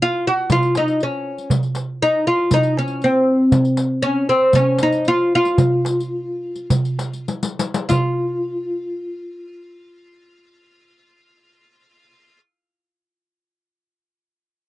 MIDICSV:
0, 0, Header, 1, 4, 480
1, 0, Start_track
1, 0, Tempo, 504202
1, 1437, Time_signature, 4, 2, 24, 8
1, 4319, Tempo, 525394
1, 5279, Tempo, 557103
1, 6239, Tempo, 601202
1, 7199, Tempo, 629591
1, 12366, End_track
2, 0, Start_track
2, 0, Title_t, "Oud"
2, 0, Program_c, 0, 24
2, 22, Note_on_c, 0, 65, 92
2, 257, Note_off_c, 0, 65, 0
2, 261, Note_on_c, 0, 66, 88
2, 492, Note_off_c, 0, 66, 0
2, 496, Note_on_c, 0, 65, 97
2, 732, Note_off_c, 0, 65, 0
2, 736, Note_on_c, 0, 63, 77
2, 973, Note_off_c, 0, 63, 0
2, 980, Note_on_c, 0, 61, 70
2, 1415, Note_off_c, 0, 61, 0
2, 1927, Note_on_c, 0, 63, 99
2, 2145, Note_off_c, 0, 63, 0
2, 2162, Note_on_c, 0, 65, 89
2, 2405, Note_off_c, 0, 65, 0
2, 2415, Note_on_c, 0, 63, 93
2, 2648, Note_off_c, 0, 63, 0
2, 2652, Note_on_c, 0, 61, 75
2, 2889, Note_off_c, 0, 61, 0
2, 2894, Note_on_c, 0, 60, 78
2, 3330, Note_off_c, 0, 60, 0
2, 3831, Note_on_c, 0, 61, 94
2, 4082, Note_off_c, 0, 61, 0
2, 4086, Note_on_c, 0, 60, 73
2, 4308, Note_off_c, 0, 60, 0
2, 4332, Note_on_c, 0, 61, 94
2, 4569, Note_off_c, 0, 61, 0
2, 4584, Note_on_c, 0, 63, 81
2, 4810, Note_off_c, 0, 63, 0
2, 4814, Note_on_c, 0, 65, 96
2, 5030, Note_off_c, 0, 65, 0
2, 5063, Note_on_c, 0, 65, 96
2, 6689, Note_off_c, 0, 65, 0
2, 7186, Note_on_c, 0, 65, 69
2, 10625, Note_off_c, 0, 65, 0
2, 12366, End_track
3, 0, Start_track
3, 0, Title_t, "Darbuka"
3, 474, Note_on_c, 9, 64, 78
3, 570, Note_off_c, 9, 64, 0
3, 715, Note_on_c, 9, 63, 62
3, 810, Note_off_c, 9, 63, 0
3, 842, Note_on_c, 9, 62, 29
3, 937, Note_off_c, 9, 62, 0
3, 959, Note_on_c, 9, 62, 25
3, 1055, Note_off_c, 9, 62, 0
3, 1312, Note_on_c, 9, 62, 23
3, 1407, Note_off_c, 9, 62, 0
3, 1429, Note_on_c, 9, 64, 95
3, 1525, Note_off_c, 9, 64, 0
3, 1679, Note_on_c, 9, 63, 63
3, 1774, Note_off_c, 9, 63, 0
3, 2271, Note_on_c, 9, 62, 26
3, 2366, Note_off_c, 9, 62, 0
3, 2393, Note_on_c, 9, 64, 79
3, 2488, Note_off_c, 9, 64, 0
3, 2525, Note_on_c, 9, 62, 22
3, 2620, Note_off_c, 9, 62, 0
3, 2640, Note_on_c, 9, 63, 63
3, 2736, Note_off_c, 9, 63, 0
3, 2761, Note_on_c, 9, 62, 24
3, 2857, Note_off_c, 9, 62, 0
3, 3233, Note_on_c, 9, 62, 23
3, 3328, Note_off_c, 9, 62, 0
3, 3350, Note_on_c, 9, 64, 95
3, 3446, Note_off_c, 9, 64, 0
3, 3591, Note_on_c, 9, 63, 60
3, 3686, Note_off_c, 9, 63, 0
3, 4204, Note_on_c, 9, 62, 25
3, 4299, Note_off_c, 9, 62, 0
3, 4317, Note_on_c, 9, 64, 90
3, 4409, Note_off_c, 9, 64, 0
3, 4550, Note_on_c, 9, 63, 67
3, 4642, Note_off_c, 9, 63, 0
3, 4670, Note_on_c, 9, 62, 26
3, 4761, Note_off_c, 9, 62, 0
3, 4782, Note_on_c, 9, 62, 23
3, 4874, Note_off_c, 9, 62, 0
3, 5148, Note_on_c, 9, 62, 21
3, 5240, Note_off_c, 9, 62, 0
3, 5273, Note_on_c, 9, 64, 101
3, 5359, Note_off_c, 9, 64, 0
3, 5504, Note_on_c, 9, 63, 69
3, 5591, Note_off_c, 9, 63, 0
3, 6114, Note_on_c, 9, 62, 25
3, 6201, Note_off_c, 9, 62, 0
3, 6240, Note_on_c, 9, 64, 97
3, 6320, Note_off_c, 9, 64, 0
3, 6467, Note_on_c, 9, 63, 60
3, 6547, Note_off_c, 9, 63, 0
3, 6709, Note_on_c, 9, 63, 53
3, 6789, Note_off_c, 9, 63, 0
3, 6835, Note_on_c, 9, 62, 59
3, 6915, Note_off_c, 9, 62, 0
3, 6954, Note_on_c, 9, 63, 73
3, 7034, Note_off_c, 9, 63, 0
3, 7082, Note_on_c, 9, 62, 71
3, 7162, Note_off_c, 9, 62, 0
3, 7206, Note_on_c, 9, 64, 79
3, 7282, Note_off_c, 9, 64, 0
3, 12366, End_track
4, 0, Start_track
4, 0, Title_t, "Riq"
4, 474, Note_on_c, 9, 54, 66
4, 569, Note_off_c, 9, 54, 0
4, 597, Note_on_c, 9, 54, 16
4, 692, Note_off_c, 9, 54, 0
4, 715, Note_on_c, 9, 54, 49
4, 810, Note_off_c, 9, 54, 0
4, 838, Note_on_c, 9, 54, 16
4, 933, Note_off_c, 9, 54, 0
4, 956, Note_on_c, 9, 54, 16
4, 1051, Note_off_c, 9, 54, 0
4, 1317, Note_on_c, 9, 54, 16
4, 1412, Note_off_c, 9, 54, 0
4, 1437, Note_on_c, 9, 54, 66
4, 1532, Note_off_c, 9, 54, 0
4, 1550, Note_on_c, 9, 54, 17
4, 1645, Note_off_c, 9, 54, 0
4, 1665, Note_on_c, 9, 54, 46
4, 1760, Note_off_c, 9, 54, 0
4, 2388, Note_on_c, 9, 54, 66
4, 2483, Note_off_c, 9, 54, 0
4, 2506, Note_on_c, 9, 54, 18
4, 2601, Note_off_c, 9, 54, 0
4, 2738, Note_on_c, 9, 54, 17
4, 2834, Note_off_c, 9, 54, 0
4, 2872, Note_on_c, 9, 54, 16
4, 2967, Note_off_c, 9, 54, 0
4, 3352, Note_on_c, 9, 54, 69
4, 3447, Note_off_c, 9, 54, 0
4, 3473, Note_on_c, 9, 54, 17
4, 3568, Note_off_c, 9, 54, 0
4, 3591, Note_on_c, 9, 54, 47
4, 3686, Note_off_c, 9, 54, 0
4, 4312, Note_on_c, 9, 54, 56
4, 4404, Note_off_c, 9, 54, 0
4, 4546, Note_on_c, 9, 54, 52
4, 4637, Note_off_c, 9, 54, 0
4, 4673, Note_on_c, 9, 54, 18
4, 4764, Note_off_c, 9, 54, 0
4, 4786, Note_on_c, 9, 54, 17
4, 4878, Note_off_c, 9, 54, 0
4, 5155, Note_on_c, 9, 54, 19
4, 5247, Note_off_c, 9, 54, 0
4, 5275, Note_on_c, 9, 54, 59
4, 5361, Note_off_c, 9, 54, 0
4, 5513, Note_on_c, 9, 54, 51
4, 5599, Note_off_c, 9, 54, 0
4, 5638, Note_on_c, 9, 54, 18
4, 5724, Note_off_c, 9, 54, 0
4, 6113, Note_on_c, 9, 54, 17
4, 6199, Note_off_c, 9, 54, 0
4, 6240, Note_on_c, 9, 54, 57
4, 6320, Note_off_c, 9, 54, 0
4, 6357, Note_on_c, 9, 54, 20
4, 6437, Note_off_c, 9, 54, 0
4, 6470, Note_on_c, 9, 54, 51
4, 6549, Note_off_c, 9, 54, 0
4, 6585, Note_on_c, 9, 54, 18
4, 6664, Note_off_c, 9, 54, 0
4, 6703, Note_on_c, 9, 54, 48
4, 6782, Note_off_c, 9, 54, 0
4, 6818, Note_on_c, 9, 54, 61
4, 6898, Note_off_c, 9, 54, 0
4, 6951, Note_on_c, 9, 54, 73
4, 7031, Note_off_c, 9, 54, 0
4, 7070, Note_on_c, 9, 54, 79
4, 7150, Note_off_c, 9, 54, 0
4, 7192, Note_on_c, 9, 54, 72
4, 7269, Note_off_c, 9, 54, 0
4, 12366, End_track
0, 0, End_of_file